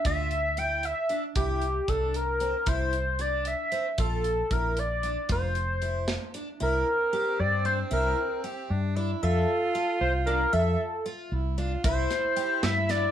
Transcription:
0.05 fretless electric bass D2, twelve-string acoustic guitar F4, analog synth lead E5 B6, kick, closed hi-hat
0.31 closed hi-hat
0.57 twelve-string acoustic guitar E4, analog synth lead G5 D7, closed hi-hat
0.83 analog synth lead E5 B6, closed hi-hat
1.09 twelve-string acoustic guitar D4, closed hi-hat
1.36 fretless electric bass C2, twelve-string acoustic guitar E4, analog synth lead G4 D6, kick, closed hi-hat
1.62 closed hi-hat
1.88 fretless electric bass C2, twelve-string acoustic guitar D4, analog synth lead A4 E6, kick, closed hi-hat
2.14 analog synth lead A#4 F6, closed hi-hat
2.40 twelve-string acoustic guitar C4, closed hi-hat
2.66 fretless electric bass C2, twelve-string acoustic guitar E4, analog synth lead C5 G6, kick, closed hi-hat
2.93 closed hi-hat
3.19 twelve-string acoustic guitar D4, analog synth lead D5 A6, closed hi-hat
3.45 analog synth lead E5 B6, closed hi-hat
3.72 twelve-string acoustic guitar C4, closed hi-hat
3.98 fretless electric bass A#1, twelve-string acoustic guitar F4, analog synth lead A4 E6, kick, closed hi-hat
4.24 closed hi-hat
4.51 fretless electric bass A#1, twelve-string acoustic guitar E4, analog synth lead A#4 F6, kick, closed hi-hat
4.77 analog synth lead D5 A6, closed hi-hat
5.03 twelve-string acoustic guitar D4, closed hi-hat
5.29 fretless electric bass F1, twelve-string acoustic guitar F4, analog synth lead C5 G6, kick, closed hi-hat
5.55 closed hi-hat
5.82 twelve-string acoustic guitar E4, closed hi-hat
6.08 snare, closed hi-hat
6.34 twelve-string acoustic guitar D4, closed hi-hat
6.60 fretless electric bass C2, alto saxophone C4, twelve-string acoustic guitar E4, analog synth lead A#4 F6
7.13 twelve-string acoustic guitar G4
7.39 fretless electric bass G2, analog synth lead D5 A6
7.65 twelve-string acoustic guitar D4, analog synth lead C5 G6
7.91 fretless electric bass C2, twelve-string acoustic guitar E4, analog synth lead A#4 F6
8.44 twelve-string acoustic guitar G4
8.70 fretless electric bass G2, alto saxophone D4
8.96 twelve-string acoustic guitar D4, alto saxophone E4
9.23 fretless electric bass F2, alto saxophone F4, analog synth lead A4 E6, twelve-string acoustic guitar E5
9.75 twelve-string acoustic guitar F4
10.01 fretless electric bass C2, analog synth lead C5 G6
10.26 twelve-string acoustic guitar D4, analog synth lead A#4 F6
10.53 fretless electric bass F2, analog synth lead A4 E6, twelve-string acoustic guitar E5
11.06 twelve-string acoustic guitar F4
11.32 fretless electric bass C2, alto saxophone E4
11.58 twelve-string acoustic guitar D4, alto saxophone F4
11.84 fretless electric bass C2, twelve-string acoustic guitar E4, alto saxophone E4, analog synth lead C5 G6, kick, closed hi-hat
12.11 snare, closed hi-hat
12.36 twelve-string acoustic guitar G4, closed hi-hat
12.63 fretless electric bass G2, analog synth lead E5 B6, snare, closed hi-hat
12.89 twelve-string acoustic guitar D4, analog synth lead D5 A6, snare, closed hi-hat

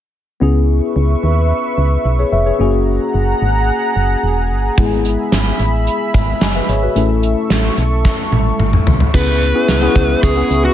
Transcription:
0.40 fm bass C#2, tine electric piano B3 C#4 E4 G#4, analog synth pad B4 E5 C#6
0.96 fm bass C#2
1.23 fm bass D#2
1.78 fm bass C#2
2.05 fm bass B1
2.19 tine electric piano G#4 C#5
2.32 fm bass F1, tine electric piano B4 E5
2.46 tine electric piano G#4 C#5
2.59 fm bass F#1, tine electric piano A#3 C#4 F#4 G#4, analog synth pad G#4 F#5 A#5
3.14 fm bass F#1
3.42 fm bass G#1
3.96 fm bass F#1
4.23 fm bass E1
4.50 fm bass G1
4.77 fm bass G#1, tine electric piano G#3 B3 E4 G#4, analog synth pad E5 B5, kick, closed hi-hat
5.05 closed hi-hat
5.32 fm bass G#1, snare, closed hi-hat
5.59 fm bass A1, closed hi-hat
5.87 closed hi-hat
6.14 fm bass G#1, kick, closed hi-hat
6.41 fm bass F#1, tine electric piano D#5 G#5, snare, closed hi-hat
6.55 tine electric piano B4 E5
6.69 fm bass G#1, tine electric piano G#4 C#5, closed hi-hat
6.83 tine electric piano F#4 B4
6.95 fm bass A1, tine electric piano A3 C#4 E4 A4, analog synth pad A4 C#6, closed hi-hat
7.23 closed hi-hat
7.50 fm bass A1, snare, closed hi-hat
7.78 fm bass B1, closed hi-hat
8.05 kick, snare
8.32 fm bass A1, high tom
8.59 fm bass G#1, mid tom
8.73 mid tom
8.87 fm bass C2, floor tom
9.00 floor tom
9.14 fm bass C#2, tine electric piano B3 C#4 E4 G#4, analog synth pad B4 E5 C#6, lead electric guitar B4, kick, crash
9.41 closed hi-hat
9.54 tine electric piano B3 C#4 E4 G#4
9.68 fm bass C#2, snare, closed hi-hat
9.82 tine electric piano B3 C#4 E4 G#4
9.96 fm bass C#2, kick, closed hi-hat
10.23 fm bass C#2, lead electric guitar G#4, kick, closed hi-hat
10.36 tine electric piano B3 C#4 E4 G#4
10.51 fm bass C#2, closed hi-hat
10.65 lead electric guitar F#4

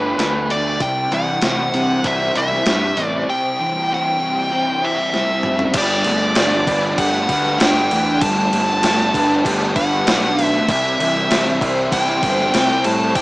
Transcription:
Already playing: picked electric bass G1, distorted electric guitar G3 A3 D4 G4, lead electric guitar B4
0.18 picked electric bass D2, distorted electric guitar A3, snare, open hi-hat
0.50 distorted electric guitar D4, lead electric guitar D5, open hi-hat
0.80 picked electric bass C2, distorted electric guitar C3, lead electric guitar G5, kick, open hi-hat
1.11 picked electric bass C2, distorted electric guitar E3, lead electric guitar F#5, open hi-hat
1.42 picked electric bass C2, distorted electric guitar C4, snare, open hi-hat
1.74 picked electric bass C3, distorted electric guitar G3, open hi-hat
2.04 picked electric bass C2, distorted electric guitar C4, lead electric guitar E5, kick, open hi-hat
2.35 picked electric bass C2, distorted electric guitar E4, lead electric guitar E5, open hi-hat
2.52 snare
2.66 picked electric bass G2, distorted electric guitar G3, snare, open hi-hat
2.97 picked electric bass A1, distorted electric guitar C4, open hi-hat
3.05 lead electric guitar D5
3.28 distorted electric guitar C3, lead electric guitar G5
3.59 distorted electric guitar E3
3.91 distorted electric guitar C4, lead electric guitar G5
4.20 distorted electric guitar G3
4.51 distorted electric guitar C4
4.82 distorted electric guitar E4, lead electric guitar E5
5.13 distorted electric guitar G3, snare
5.43 distorted electric guitar C4, mid tom
5.59 floor tom
5.74 picked electric bass G1, distorted electric guitar G3, kick, crash
5.78 lead electric guitar D5
6.04 picked electric bass G1, distorted electric guitar A3, crash
6.35 picked electric bass G1, distorted electric guitar D4, snare, crash
6.67 picked electric bass G1, distorted electric guitar B4, kick, crash
6.98 picked electric bass G1, distorted electric guitar G4, lead electric guitar F#5, kick, crash
7.28 picked electric bass D2, distorted electric guitar B4, kick, crash
7.46 snare
7.59 picked electric bass G1, distorted electric guitar D4, lead electric guitar G5, snare, crash
7.91 picked electric bass E2, distorted electric guitar A3, crash
8.21 picked electric bass G1, distorted electric guitar G3, lead electric guitar A5, kick, crash
8.53 picked electric bass G1, distorted electric guitar A3, crash
8.83 picked electric bass G1, distorted electric guitar D4, snare, crash
9.14 picked electric bass G1, distorted electric guitar B4, kick, crash
9.44 picked electric bass G1, distorted electric guitar G4, kick, crash
9.76 picked electric bass G1, distorted electric guitar B4, lead electric guitar F#5, kick, crash
10.07 picked electric bass B1, distorted electric guitar D4, snare, crash
10.38 distorted electric guitar A3, crash
10.44 lead electric guitar E5
10.69 picked electric bass C2, distorted electric guitar C3, lead electric guitar E5, kick, crash
10.99 picked electric bass C2, distorted electric guitar E3, crash
11.30 picked electric bass C2, distorted electric guitar C4, snare, crash
11.61 picked electric bass C2, distorted electric guitar C5, kick, crash
11.92 picked electric bass C2, distorted electric guitar E4, lead electric guitar G5, kick, crash
12.22 picked electric bass G1, distorted electric guitar C5, kick, crash
12.40 snare
12.53 picked electric bass C2, distorted electric guitar C4, snare, crash
12.84 picked electric bass A2, distorted electric guitar G3, lead electric guitar A5, crash
13.15 picked electric bass C2, distorted electric guitar C3, lead electric guitar G5, kick, crash

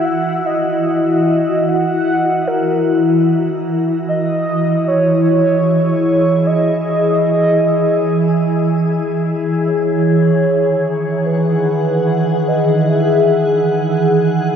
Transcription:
Already playing: ambient pad E3 E4 F#4
0.05 soft synth lead F#5
0.46 soft synth lead D#5
0.86 soft synth lead D#5
1.69 soft synth lead F#5
2.47 soft synth lead A#4
4.08 soft synth lead D#5
4.88 soft synth lead C#5
5.01 ambient pad G#4
6.47 soft synth lead D#5
9.67 soft synth lead C#5
9.96 ambient pad D#3
10.66 ambient pad F#5
11.26 soft synth lead B4
12.48 soft synth lead D#5
12.89 soft synth lead E5

